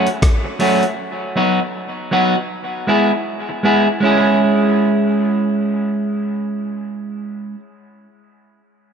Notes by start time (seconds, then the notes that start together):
0.07 closed hi-hat
0.22 kick, cross-stick, closed hi-hat
0.45 muted clean electric guitar stroke
0.59 F#3 A3 C#4 F#4, open hi-hat
0.83 closed hi-hat
1.36 F#3 B3 D#4 F#4
2.11 F#3 B3 D#4 F#4
2.87 G#3 B3 E4 G#4
3.49 muted clean electric guitar stroke
3.63 G#3 B3 E4 G#4
4.00 G#3 C#4 E4
4.06 G#4